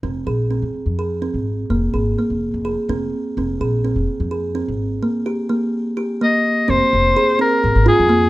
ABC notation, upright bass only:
X:1
M:7/8
L:1/16
Q:1/4=126
K:Fm
V:1 name="Upright bass" clef=bass
F,,,2 B,,,3 F,,, z F,,4 A,,,3 | F,,,2 A,,,2 z F,,,2 F,,,2 z F,,,2 z2 | F,,,2 B,,,3 F,,, z F,,4 A,,,3 | z12 z2 |
F,,, z F,,,2 z4 A,,, A,,, z F,,3 |]